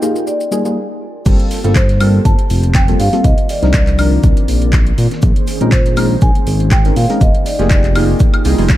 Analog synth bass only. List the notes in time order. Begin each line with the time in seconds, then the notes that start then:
1.26 G1
1.64 G1
2.25 G1
2.50 F1
3.00 G2
3.24 C2
3.63 C2
4.24 C2
4.48 A#1
4.98 A#2
5.23 A#1
5.61 A#1
6.22 A#1
6.47 G#1
6.96 A#2
7.21 F1
7.59 F1
8.45 C2
8.59 F1